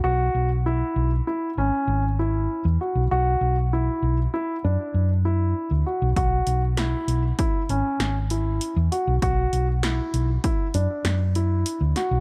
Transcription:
<<
  \new Staff \with { instrumentName = "Grand piano" } { \time 5/4 \key b \dorian \tempo 4 = 98 fis'4 e'4 e'8 cis'4 e'4 fis'8 | fis'4 e'4 e'8 d'4 e'4 fis'8 | fis'4 e'4 e'8 cis'4 e'4 fis'8 | fis'4 e'4 e'8 d'4 e'4 fis'8 | }
  \new Staff \with { instrumentName = "Fingered electric bass" } { \clef bass \time 5/4 \key b \dorian b,,8 b,,4 b,,8 r8 gis,,16 r16 gis,,4~ gis,,16 e,16 r16 b,,16 | b,,8 b,,4 b,,8 r8 fis,16 r16 fis,4~ fis,16 d,16 r16 b,,16 | b,,8 b,,4 b,,8 r8 gis,,16 r16 gis,,4~ gis,,16 e,16 r16 b,,16 | b,,8 b,,4 b,,8 r8 fis,16 r16 fis,4~ fis,16 d,16 r16 b,,16 | }
  \new DrumStaff \with { instrumentName = "Drums" } \drummode { \time 5/4 r4 r4 r4 r4 r4 | r4 r4 r4 r4 r4 | <hh bd>8 hh8 <hh sn>8 hh8 <hh bd>8 hh8 <hh sn>8 hh8 hh8 hh8 | <hh bd>8 hh8 <hh sn>8 hh8 <hh bd>8 hh8 <hh sn>8 hh8 hh8 <hh sn>8 | }
>>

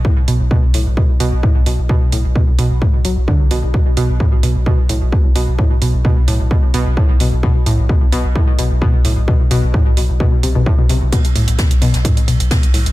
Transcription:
<<
  \new Staff \with { instrumentName = "Synth arpeggio sound" } { \clef bass \time 4/4 \tempo 4 = 130 a,16 r16 b,16 r16 b,16 r16 a,16 r16 b,16 r16 b,16 r16 a,16 r16 b,16 r16 | b,16 r16 a,16 r16 b,16 r16 b,16 r16 a,16 r16 fis16 r16 d16 r16 b,16 r16 | b,16 r16 b,16 r16 a,16 r16 b,16 r16 b,16 r16 a,16 r16 b,16 r16 b,16 r16 | a,16 r16 b,16 r16 b,16 r16 a,16 r16 b,16 r16 b,16 r16 a,16 r16 b,16 r16 |
b,16 r16 a,16 r16 b,16 r16 b,16 r16 a,16 r16 b,16 r16 b,16 r16 a,16 r16 | b,16 r16 b,16 r16 a,16 r16 b,16 r16 b,16 r16 c16 b,16 a,16 b,16 c16 r16 | b,16 r16 a,16 r16 b,16 r16 b,16 r16 a,16 r16 b,16 r16 b,16 r16 a,16 r16 | }
  \new Staff \with { instrumentName = "Sub bass" } { \clef bass \time 4/4 r8 b,,16 b,,16 r16 b,,16 b,,16 b,,16 r8 b,,16 b,,16 r16 b,,16 b,,16 b,,16 | r8 b,,16 b,,16 r16 b,,16 b,,16 b,,16 r8 b,,16 b,,16 r16 b,,16 b,,16 b,,16 | r8 b,,16 b,,16 r16 b,,16 b,,16 b,,16 r8 b,,16 b,,16 r16 b,,16 b,,16 b,,16 | r8 b,,16 b,,16 r16 b,,16 b,,16 b,,16 r8 b,,16 b,,16 r16 b,,16 b,,16 b,,16 |
r8 b,,16 b,,16 r16 b,,16 b,,16 b,,16 r8 b,,16 b,,16 r16 b,,16 b,,16 b,,16 | r8 b,,16 b,,16 r16 b,,16 b,,16 b,,16 r8 b,,16 b,,16 r16 b,,16 b,,16 b,,16 | r8 b,,16 b,,16 r16 b,,16 b,,16 b,,16 r8 b,,16 b,,16 r16 b,,16 b,,16 b,,16 | }
  \new DrumStaff \with { instrumentName = "Drums" } \drummode { \time 4/4 bd8 hho8 bd8 hho8 bd8 hho8 bd8 hho8 | bd8 hho8 bd8 hho8 bd8 hho8 bd8 hho8 | bd8 hho8 bd8 hho8 bd8 hho8 bd8 hho8 | bd8 hho8 bd8 hho8 bd8 hho8 bd8 hho8 |
bd8 hho8 bd8 hho8 bd8 hho8 bd8 hho8 | bd8 hho8 bd8 hho8 bd8 hho8 bd8 hho8 | <hh bd cymr>16 <hh cymr>16 <hho cymr>16 hh16 <hh bd cymr sn>16 hh16 <hho cymr>16 <hh sn>16 <hh bd cymr>16 hh16 <hho cymr>16 <hh cymr>16 <hh bd cymr sn>16 hh16 <hho cymr>16 <hh cymr>16 | }
>>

